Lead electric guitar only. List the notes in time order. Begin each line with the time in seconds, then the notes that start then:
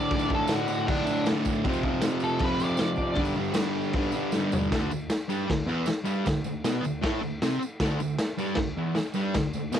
Already playing: D5
0.35 A4
0.52 F#4
0.69 F#4
0.87 D4
2.24 A4
2.44 B4
2.64 D5